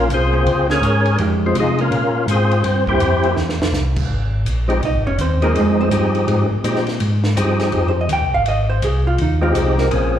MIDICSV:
0, 0, Header, 1, 5, 480
1, 0, Start_track
1, 0, Key_signature, -4, "minor"
1, 0, Tempo, 363416
1, 1574, Time_signature, 4, 2, 24, 8
1, 13459, End_track
2, 0, Start_track
2, 0, Title_t, "Hollow-body jazz guitar"
2, 0, Program_c, 0, 26
2, 433, Note_on_c, 0, 58, 69
2, 436, Note_on_c, 0, 61, 67
2, 439, Note_on_c, 0, 68, 76
2, 447, Note_on_c, 0, 72, 83
2, 593, Note_off_c, 0, 58, 0
2, 594, Note_off_c, 0, 61, 0
2, 596, Note_off_c, 0, 68, 0
2, 600, Note_off_c, 0, 72, 0
2, 913, Note_on_c, 0, 58, 60
2, 918, Note_on_c, 0, 61, 64
2, 926, Note_on_c, 0, 68, 68
2, 935, Note_on_c, 0, 72, 68
2, 1074, Note_off_c, 0, 58, 0
2, 1076, Note_off_c, 0, 61, 0
2, 1080, Note_off_c, 0, 68, 0
2, 1084, Note_off_c, 0, 72, 0
2, 1574, Note_on_c, 0, 53, 58
2, 1582, Note_on_c, 0, 56, 61
2, 1586, Note_on_c, 0, 67, 68
2, 1587, Note_on_c, 0, 63, 68
2, 2299, Note_off_c, 0, 53, 0
2, 2303, Note_off_c, 0, 56, 0
2, 2305, Note_off_c, 0, 63, 0
2, 2305, Note_off_c, 0, 67, 0
2, 3804, Note_on_c, 0, 58, 67
2, 3815, Note_on_c, 0, 64, 68
2, 3820, Note_on_c, 0, 67, 73
2, 3960, Note_off_c, 0, 58, 0
2, 3966, Note_off_c, 0, 64, 0
2, 3968, Note_off_c, 0, 67, 0
2, 4289, Note_on_c, 0, 58, 64
2, 4295, Note_on_c, 0, 64, 72
2, 4302, Note_on_c, 0, 67, 72
2, 4443, Note_off_c, 0, 58, 0
2, 4446, Note_off_c, 0, 64, 0
2, 4449, Note_off_c, 0, 67, 0
2, 6408, Note_on_c, 0, 75, 80
2, 6419, Note_on_c, 0, 63, 64
2, 6688, Note_off_c, 0, 75, 0
2, 6694, Note_off_c, 0, 63, 0
2, 6694, Note_on_c, 0, 73, 83
2, 6699, Note_on_c, 0, 61, 68
2, 6858, Note_off_c, 0, 73, 0
2, 6861, Note_off_c, 0, 61, 0
2, 6883, Note_on_c, 0, 72, 74
2, 6890, Note_on_c, 0, 60, 56
2, 7166, Note_off_c, 0, 72, 0
2, 7169, Note_off_c, 0, 60, 0
2, 7177, Note_on_c, 0, 70, 77
2, 7178, Note_on_c, 0, 58, 62
2, 7338, Note_off_c, 0, 70, 0
2, 7340, Note_off_c, 0, 58, 0
2, 7378, Note_on_c, 0, 56, 61
2, 7380, Note_on_c, 0, 68, 79
2, 7652, Note_off_c, 0, 68, 0
2, 7654, Note_off_c, 0, 56, 0
2, 7666, Note_on_c, 0, 60, 69
2, 7671, Note_on_c, 0, 72, 91
2, 7764, Note_off_c, 0, 72, 0
2, 7765, Note_off_c, 0, 60, 0
2, 10411, Note_on_c, 0, 72, 77
2, 10549, Note_off_c, 0, 72, 0
2, 10578, Note_on_c, 0, 75, 74
2, 10713, Note_off_c, 0, 75, 0
2, 10735, Note_on_c, 0, 79, 95
2, 11011, Note_off_c, 0, 79, 0
2, 11020, Note_on_c, 0, 77, 94
2, 11181, Note_off_c, 0, 77, 0
2, 11206, Note_on_c, 0, 75, 83
2, 11485, Note_on_c, 0, 72, 85
2, 11486, Note_off_c, 0, 75, 0
2, 11652, Note_off_c, 0, 72, 0
2, 11682, Note_on_c, 0, 68, 77
2, 11964, Note_off_c, 0, 68, 0
2, 11981, Note_on_c, 0, 65, 74
2, 12141, Note_off_c, 0, 65, 0
2, 12174, Note_on_c, 0, 63, 66
2, 12450, Note_off_c, 0, 63, 0
2, 12451, Note_on_c, 0, 65, 75
2, 12615, Note_off_c, 0, 65, 0
2, 12648, Note_on_c, 0, 68, 64
2, 12927, Note_off_c, 0, 68, 0
2, 12933, Note_on_c, 0, 70, 76
2, 13373, Note_off_c, 0, 70, 0
2, 13459, End_track
3, 0, Start_track
3, 0, Title_t, "Tonewheel organ"
3, 0, Program_c, 1, 16
3, 181, Note_on_c, 1, 60, 70
3, 182, Note_on_c, 1, 72, 87
3, 187, Note_on_c, 1, 68, 69
3, 188, Note_on_c, 1, 65, 71
3, 889, Note_off_c, 1, 60, 0
3, 890, Note_off_c, 1, 72, 0
3, 892, Note_off_c, 1, 68, 0
3, 893, Note_off_c, 1, 65, 0
3, 938, Note_on_c, 1, 73, 105
3, 943, Note_on_c, 1, 68, 88
3, 945, Note_on_c, 1, 61, 91
3, 953, Note_on_c, 1, 70, 86
3, 1539, Note_off_c, 1, 73, 0
3, 1542, Note_off_c, 1, 68, 0
3, 1543, Note_off_c, 1, 61, 0
3, 1547, Note_off_c, 1, 70, 0
3, 1932, Note_on_c, 1, 53, 68
3, 1933, Note_on_c, 1, 56, 68
3, 1933, Note_on_c, 1, 65, 88
3, 1938, Note_on_c, 1, 60, 66
3, 2076, Note_off_c, 1, 53, 0
3, 2077, Note_off_c, 1, 56, 0
3, 2077, Note_off_c, 1, 65, 0
3, 2080, Note_off_c, 1, 60, 0
3, 2109, Note_on_c, 1, 68, 96
3, 2112, Note_on_c, 1, 56, 73
3, 2117, Note_on_c, 1, 63, 71
3, 2119, Note_on_c, 1, 65, 70
3, 2378, Note_off_c, 1, 68, 0
3, 2380, Note_off_c, 1, 56, 0
3, 2383, Note_off_c, 1, 63, 0
3, 2383, Note_off_c, 1, 65, 0
3, 2390, Note_on_c, 1, 70, 89
3, 2394, Note_on_c, 1, 58, 76
3, 2395, Note_on_c, 1, 61, 76
3, 2404, Note_on_c, 1, 65, 75
3, 2986, Note_off_c, 1, 70, 0
3, 2988, Note_off_c, 1, 58, 0
3, 2989, Note_off_c, 1, 61, 0
3, 2993, Note_off_c, 1, 65, 0
3, 3034, Note_on_c, 1, 72, 90
3, 3043, Note_on_c, 1, 60, 69
3, 3049, Note_on_c, 1, 65, 69
3, 3051, Note_on_c, 1, 68, 73
3, 3480, Note_off_c, 1, 65, 0
3, 3481, Note_off_c, 1, 68, 0
3, 3757, Note_off_c, 1, 72, 0
3, 3762, Note_off_c, 1, 60, 0
3, 3812, Note_on_c, 1, 72, 111
3, 3814, Note_on_c, 1, 64, 88
3, 3816, Note_on_c, 1, 67, 81
3, 3819, Note_on_c, 1, 60, 83
3, 4417, Note_off_c, 1, 72, 0
3, 4418, Note_off_c, 1, 64, 0
3, 4419, Note_off_c, 1, 67, 0
3, 4421, Note_off_c, 1, 60, 0
3, 6180, Note_on_c, 1, 53, 64
3, 6190, Note_on_c, 1, 56, 63
3, 6190, Note_on_c, 1, 60, 62
3, 6193, Note_on_c, 1, 63, 63
3, 6196, Note_on_c, 1, 67, 76
3, 6349, Note_off_c, 1, 53, 0
3, 6354, Note_off_c, 1, 56, 0
3, 6354, Note_off_c, 1, 60, 0
3, 6355, Note_off_c, 1, 63, 0
3, 6357, Note_off_c, 1, 67, 0
3, 7160, Note_on_c, 1, 56, 54
3, 7162, Note_on_c, 1, 53, 63
3, 7164, Note_on_c, 1, 60, 60
3, 7167, Note_on_c, 1, 68, 70
3, 7171, Note_on_c, 1, 63, 57
3, 7781, Note_off_c, 1, 56, 0
3, 7782, Note_off_c, 1, 53, 0
3, 7783, Note_off_c, 1, 60, 0
3, 7784, Note_off_c, 1, 68, 0
3, 7786, Note_off_c, 1, 63, 0
3, 7808, Note_on_c, 1, 53, 77
3, 7809, Note_on_c, 1, 63, 63
3, 7813, Note_on_c, 1, 68, 64
3, 7814, Note_on_c, 1, 67, 76
3, 7816, Note_on_c, 1, 60, 68
3, 8536, Note_off_c, 1, 53, 0
3, 8536, Note_off_c, 1, 63, 0
3, 8538, Note_off_c, 1, 68, 0
3, 8539, Note_off_c, 1, 67, 0
3, 8540, Note_off_c, 1, 60, 0
3, 8772, Note_on_c, 1, 53, 64
3, 8774, Note_on_c, 1, 56, 59
3, 8784, Note_on_c, 1, 63, 61
3, 8785, Note_on_c, 1, 60, 57
3, 8785, Note_on_c, 1, 67, 70
3, 9048, Note_off_c, 1, 53, 0
3, 9049, Note_off_c, 1, 56, 0
3, 9054, Note_off_c, 1, 60, 0
3, 9054, Note_off_c, 1, 63, 0
3, 9054, Note_off_c, 1, 67, 0
3, 9729, Note_on_c, 1, 53, 69
3, 9730, Note_on_c, 1, 63, 68
3, 9732, Note_on_c, 1, 67, 81
3, 9735, Note_on_c, 1, 60, 64
3, 9735, Note_on_c, 1, 68, 73
3, 10456, Note_off_c, 1, 53, 0
3, 10456, Note_off_c, 1, 63, 0
3, 10457, Note_off_c, 1, 67, 0
3, 10459, Note_off_c, 1, 60, 0
3, 10459, Note_off_c, 1, 68, 0
3, 12435, Note_on_c, 1, 56, 55
3, 12437, Note_on_c, 1, 53, 73
3, 12438, Note_on_c, 1, 63, 65
3, 12439, Note_on_c, 1, 67, 70
3, 12441, Note_on_c, 1, 60, 65
3, 13057, Note_off_c, 1, 56, 0
3, 13058, Note_off_c, 1, 53, 0
3, 13059, Note_off_c, 1, 63, 0
3, 13060, Note_off_c, 1, 60, 0
3, 13060, Note_off_c, 1, 67, 0
3, 13088, Note_on_c, 1, 60, 55
3, 13089, Note_on_c, 1, 53, 56
3, 13090, Note_on_c, 1, 58, 54
3, 13090, Note_on_c, 1, 68, 60
3, 13092, Note_on_c, 1, 61, 50
3, 13459, Note_off_c, 1, 53, 0
3, 13459, Note_off_c, 1, 58, 0
3, 13459, Note_off_c, 1, 60, 0
3, 13459, Note_off_c, 1, 61, 0
3, 13459, Note_off_c, 1, 68, 0
3, 13459, End_track
4, 0, Start_track
4, 0, Title_t, "Tonewheel organ"
4, 0, Program_c, 2, 16
4, 116, Note_on_c, 2, 36, 95
4, 590, Note_off_c, 2, 36, 0
4, 593, Note_on_c, 2, 37, 86
4, 1069, Note_off_c, 2, 37, 0
4, 1077, Note_on_c, 2, 44, 92
4, 1551, Note_off_c, 2, 44, 0
4, 1572, Note_on_c, 2, 41, 78
4, 2039, Note_off_c, 2, 41, 0
4, 2049, Note_on_c, 2, 48, 92
4, 2518, Note_off_c, 2, 48, 0
4, 2525, Note_on_c, 2, 46, 91
4, 2996, Note_off_c, 2, 46, 0
4, 3002, Note_on_c, 2, 44, 97
4, 3474, Note_off_c, 2, 44, 0
4, 3494, Note_on_c, 2, 43, 85
4, 3961, Note_off_c, 2, 43, 0
4, 3965, Note_on_c, 2, 41, 98
4, 4436, Note_off_c, 2, 41, 0
4, 4450, Note_on_c, 2, 40, 87
4, 4734, Note_off_c, 2, 40, 0
4, 4750, Note_on_c, 2, 40, 43
4, 4841, Note_off_c, 2, 40, 0
4, 4913, Note_on_c, 2, 36, 90
4, 5390, Note_off_c, 2, 36, 0
4, 5414, Note_on_c, 2, 32, 71
4, 5881, Note_off_c, 2, 32, 0
4, 5886, Note_on_c, 2, 34, 93
4, 6357, Note_off_c, 2, 34, 0
4, 6375, Note_on_c, 2, 36, 82
4, 6531, Note_off_c, 2, 36, 0
4, 6532, Note_on_c, 2, 32, 52
4, 6694, Note_off_c, 2, 32, 0
4, 6703, Note_on_c, 2, 29, 63
4, 6849, Note_off_c, 2, 29, 0
4, 6850, Note_on_c, 2, 39, 89
4, 7319, Note_off_c, 2, 39, 0
4, 7329, Note_on_c, 2, 41, 77
4, 7798, Note_off_c, 2, 41, 0
4, 7803, Note_on_c, 2, 43, 84
4, 8275, Note_off_c, 2, 43, 0
4, 8296, Note_on_c, 2, 44, 90
4, 8579, Note_off_c, 2, 44, 0
4, 8595, Note_on_c, 2, 44, 38
4, 8684, Note_off_c, 2, 44, 0
4, 8767, Note_on_c, 2, 46, 97
4, 9237, Note_off_c, 2, 46, 0
4, 9254, Note_on_c, 2, 44, 83
4, 9720, Note_off_c, 2, 44, 0
4, 9734, Note_on_c, 2, 43, 92
4, 10200, Note_off_c, 2, 43, 0
4, 10217, Note_on_c, 2, 41, 84
4, 10682, Note_off_c, 2, 41, 0
4, 10684, Note_on_c, 2, 39, 92
4, 10845, Note_off_c, 2, 39, 0
4, 10845, Note_on_c, 2, 36, 56
4, 11010, Note_off_c, 2, 36, 0
4, 11016, Note_on_c, 2, 32, 65
4, 11150, Note_off_c, 2, 32, 0
4, 11166, Note_on_c, 2, 32, 82
4, 11636, Note_off_c, 2, 32, 0
4, 11652, Note_on_c, 2, 36, 93
4, 12119, Note_off_c, 2, 36, 0
4, 12131, Note_on_c, 2, 39, 81
4, 12598, Note_off_c, 2, 39, 0
4, 12604, Note_on_c, 2, 36, 87
4, 13075, Note_off_c, 2, 36, 0
4, 13093, Note_on_c, 2, 34, 76
4, 13459, Note_off_c, 2, 34, 0
4, 13459, End_track
5, 0, Start_track
5, 0, Title_t, "Drums"
5, 133, Note_on_c, 9, 44, 56
5, 133, Note_on_c, 9, 51, 62
5, 265, Note_off_c, 9, 44, 0
5, 265, Note_off_c, 9, 51, 0
5, 614, Note_on_c, 9, 51, 58
5, 746, Note_off_c, 9, 51, 0
5, 923, Note_on_c, 9, 38, 54
5, 1055, Note_off_c, 9, 38, 0
5, 1095, Note_on_c, 9, 44, 54
5, 1095, Note_on_c, 9, 51, 70
5, 1228, Note_off_c, 9, 44, 0
5, 1228, Note_off_c, 9, 51, 0
5, 1393, Note_on_c, 9, 51, 46
5, 1525, Note_off_c, 9, 51, 0
5, 1563, Note_on_c, 9, 51, 64
5, 1695, Note_off_c, 9, 51, 0
5, 2049, Note_on_c, 9, 44, 52
5, 2049, Note_on_c, 9, 51, 74
5, 2181, Note_off_c, 9, 44, 0
5, 2181, Note_off_c, 9, 51, 0
5, 2357, Note_on_c, 9, 51, 40
5, 2489, Note_off_c, 9, 51, 0
5, 2532, Note_on_c, 9, 51, 59
5, 2664, Note_off_c, 9, 51, 0
5, 3011, Note_on_c, 9, 44, 55
5, 3011, Note_on_c, 9, 51, 75
5, 3143, Note_off_c, 9, 44, 0
5, 3143, Note_off_c, 9, 51, 0
5, 3320, Note_on_c, 9, 51, 50
5, 3452, Note_off_c, 9, 51, 0
5, 3486, Note_on_c, 9, 51, 68
5, 3618, Note_off_c, 9, 51, 0
5, 3795, Note_on_c, 9, 36, 57
5, 3927, Note_off_c, 9, 36, 0
5, 3964, Note_on_c, 9, 44, 55
5, 3964, Note_on_c, 9, 51, 75
5, 4096, Note_off_c, 9, 44, 0
5, 4096, Note_off_c, 9, 51, 0
5, 4272, Note_on_c, 9, 51, 42
5, 4404, Note_off_c, 9, 51, 0
5, 4445, Note_on_c, 9, 38, 48
5, 4577, Note_off_c, 9, 38, 0
5, 4613, Note_on_c, 9, 38, 51
5, 4745, Note_off_c, 9, 38, 0
5, 4778, Note_on_c, 9, 38, 87
5, 4910, Note_off_c, 9, 38, 0
5, 4935, Note_on_c, 9, 44, 61
5, 4936, Note_on_c, 9, 38, 62
5, 5067, Note_off_c, 9, 44, 0
5, 5068, Note_off_c, 9, 38, 0
5, 5235, Note_on_c, 9, 49, 73
5, 5238, Note_on_c, 9, 36, 77
5, 5367, Note_off_c, 9, 49, 0
5, 5370, Note_off_c, 9, 36, 0
5, 5893, Note_on_c, 9, 44, 50
5, 5893, Note_on_c, 9, 51, 69
5, 6025, Note_off_c, 9, 44, 0
5, 6025, Note_off_c, 9, 51, 0
5, 6204, Note_on_c, 9, 51, 41
5, 6336, Note_off_c, 9, 51, 0
5, 6374, Note_on_c, 9, 51, 57
5, 6507, Note_off_c, 9, 51, 0
5, 6848, Note_on_c, 9, 44, 55
5, 6848, Note_on_c, 9, 51, 63
5, 6980, Note_off_c, 9, 44, 0
5, 6980, Note_off_c, 9, 51, 0
5, 7158, Note_on_c, 9, 51, 45
5, 7291, Note_off_c, 9, 51, 0
5, 7336, Note_on_c, 9, 51, 67
5, 7468, Note_off_c, 9, 51, 0
5, 7809, Note_on_c, 9, 44, 52
5, 7809, Note_on_c, 9, 51, 69
5, 7941, Note_off_c, 9, 44, 0
5, 7941, Note_off_c, 9, 51, 0
5, 8118, Note_on_c, 9, 51, 45
5, 8250, Note_off_c, 9, 51, 0
5, 8291, Note_on_c, 9, 51, 61
5, 8424, Note_off_c, 9, 51, 0
5, 8773, Note_on_c, 9, 44, 53
5, 8773, Note_on_c, 9, 51, 68
5, 8905, Note_off_c, 9, 44, 0
5, 8905, Note_off_c, 9, 51, 0
5, 8925, Note_on_c, 9, 38, 27
5, 9057, Note_off_c, 9, 38, 0
5, 9069, Note_on_c, 9, 51, 48
5, 9089, Note_on_c, 9, 38, 39
5, 9201, Note_off_c, 9, 51, 0
5, 9221, Note_off_c, 9, 38, 0
5, 9246, Note_on_c, 9, 51, 70
5, 9378, Note_off_c, 9, 51, 0
5, 9558, Note_on_c, 9, 38, 57
5, 9690, Note_off_c, 9, 38, 0
5, 9733, Note_on_c, 9, 44, 66
5, 9733, Note_on_c, 9, 51, 73
5, 9865, Note_off_c, 9, 44, 0
5, 9865, Note_off_c, 9, 51, 0
5, 10033, Note_on_c, 9, 51, 44
5, 10034, Note_on_c, 9, 38, 46
5, 10165, Note_off_c, 9, 51, 0
5, 10166, Note_off_c, 9, 38, 0
5, 10198, Note_on_c, 9, 51, 55
5, 10330, Note_off_c, 9, 51, 0
5, 10686, Note_on_c, 9, 44, 47
5, 10686, Note_on_c, 9, 51, 73
5, 10818, Note_off_c, 9, 44, 0
5, 10818, Note_off_c, 9, 51, 0
5, 11169, Note_on_c, 9, 51, 66
5, 11301, Note_off_c, 9, 51, 0
5, 11653, Note_on_c, 9, 44, 62
5, 11653, Note_on_c, 9, 51, 69
5, 11785, Note_off_c, 9, 44, 0
5, 11785, Note_off_c, 9, 51, 0
5, 12128, Note_on_c, 9, 51, 57
5, 12260, Note_off_c, 9, 51, 0
5, 12613, Note_on_c, 9, 44, 62
5, 12613, Note_on_c, 9, 51, 73
5, 12745, Note_off_c, 9, 44, 0
5, 12745, Note_off_c, 9, 51, 0
5, 12920, Note_on_c, 9, 38, 46
5, 13052, Note_off_c, 9, 38, 0
5, 13091, Note_on_c, 9, 51, 65
5, 13223, Note_off_c, 9, 51, 0
5, 13459, End_track
0, 0, End_of_file